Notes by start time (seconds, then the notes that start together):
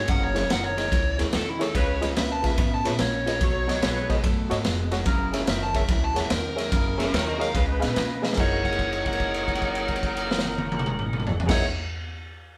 0.08 F#1 F#2 C#3 E4 G#4 A#4 F#5, kick, snare, ride
0.23 C#5
0.34 F#2 C#3 E4 G#4 A#4 C#5, snare, ride
0.49 F#1 F#2 D#3 E4 G#4 A#4 F#5, snare, ride
0.64 C#5
0.77 F#2 D#3 E4 G#4 A#4 C#5 D#5, snare, ride
0.92 C#2 F#2 E3, kick, snare, ride
1.18 D#2 F#2 E3 E4 G#4 A#4 C#5, snare, ride
1.33 E2 F#2 D#3 A4, snare, ride
1.50 E4
1.59 F#2 D#3 E4 G#4 A4 A#4 C#5, snare, ride
1.74 C#2 C#3 G#3 D#4 F4 B4 C#5, kick, snare, ride
2.01 C#3 G#3 F4 G#4 B4 D#5, snare, ride
2.15 C#2 C#3 A#3 D#4 F4 B4 E5, snare, ride
2.32 A5
2.43 C#3 A#3 F4 G#4 B4 E5 F5, kick, snare, ride
2.58 G#2 C#3 B3 E5, kick, snare, ride
2.74 A5
2.85 A#2 C#3 B3 F4 G#4 B4 C#5 E5, snare, ride
2.99 A#1 C#3 A#3 C#5, snare, ride
3.26 C#3 A#3 F4 G#4 B4 D#5, snare, ride
3.40 B1 B2 F#3 D#4 A4 C#5, kick, snare, ride
3.67 B2 F#3 F#4 A4 C#5 D#5, snare, ride
3.81 B1 B2 G#3 D#4 A4 B4, snare, ride
4.09 B2 G#3 F#4 A4 C#5 D#5, kick, snare, ride
4.24 F#2 B2 A3, kick, snare, ride
4.50 G#2 B2 A3 F#4 A4 C#5 D#5, snare, ride
4.64 F1 B2 G#3, snare, ride
4.91 B2 G#3 F#4 A4 C#5 F#5, snare, ride
5.05 F#1 F#2 C#3 E4 G#4 A#4, kick, snare, ride
5.33 F#2 C#3 G#4 A#4 C#5 E5, snare, ride
5.47 F#1 F#2 D#3 E4 G#4 A#4 E5, snare, ride
5.63 A5
5.74 F#2 D#3 G#4 A#4 C#5 E5, kick, snare, ride
5.88 C#2 F#2 E3 E5, kick, snare, ride
6.04 A5
6.15 D#2 F#2 E3 G#4 A#4 C#5 F#5, snare, ride
6.20 E5
6.30 E2 F#2 D#3 A#4, snare, ride
6.56 F#2 D#3 G#4 A#4 C#5 E5, snare, ride
6.71 F#1 F#2 C#3 E4 G#4 A#4, kick, snare, ride
6.98 F#2 C#3 C#4 G#4 A#4 C#5 E5, snare, ride
7.12 D#2 F#2 D#3 E4 G#4 A#4 C#5, snare, ride
7.27 F#4 D#5
7.39 F#2 D#3 G#4 A#4 C#5 D#5 F5, snare, ride
7.53 C#2 C#3 G#3 D#4 F4 B4, kick, snare, ride
7.80 A#2 C#3 B3 G#4 B4 D#5 F5, snare, ride
7.96 B2 C#3 A#3, snare, ride
8.22 C#3 A#3 G#4 B4 D#5 F5, snare
8.33 F#2 G#4 A#4, snare
8.37 F#1 E3 A#3 D#4 G#4 A#4 C#5 D#5 F#5, kick, crash
8.65 F#5, kick, crash
8.72 crash
8.79 kick, crash
8.93 crash
9.05 F#5, kick, crash
9.13 crash
9.20 kick, crash
9.34 crash
9.48 kick, crash
9.55 crash
9.62 kick, crash
9.75 crash
9.88 kick, crash
9.96 crash
10.03 kick, crash
10.16 crash
10.31 snare
10.39 snare
10.45 high tom
10.58 high tom
10.72 high tom
10.79 mid tom
10.86 mid tom
10.99 mid tom
11.13 mid tom
11.20 mid tom
11.27 floor tom
11.40 floor tom
11.47 F#1 F#2 E3 A#3 D#4 E4 G#4 A#4 D#5 F#5, kick, snare, crash
11.51 D#4 C#5 E5